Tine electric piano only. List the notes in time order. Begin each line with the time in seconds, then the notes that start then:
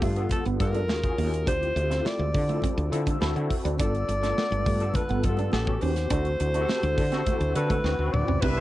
Already playing: B3 D4 F4 G4 A4
0.16 B3 D4 F4 A4
0.59 B3 D4 F4 A4
0.88 C#4 F4 F#4 G#4
1.03 C#4 F4 F#4 G#4
1.46 C4 E4 F4 G4
1.90 C4 E4 F4 A4
2.48 C4 E4 F4 A4
2.91 C4 E4 F4 A4
3.20 C4 E4 F#4 A4
3.35 C4 E4 F#4 A4
3.79 B3 D4 F4 A4
4.22 A3 D4 F4 A4
4.29 B3
4.80 B3 D4 F4 A4
5.23 B3 D4 F4 A4
5.52 B3 C#4 F#4 G4
5.67 B3 C#4 F#4 G4
6.10 C4 E4 F#4 A4
6.54 C4 E4 F#4 G4
6.61 A4
7.11 C4 E4 F#4 A4
7.55 C4 E4 F#4 A4
7.84 C4 E4 F#4 B4
7.99 C4 E4 F#4 B4
8.42 D4 E4 G4 B4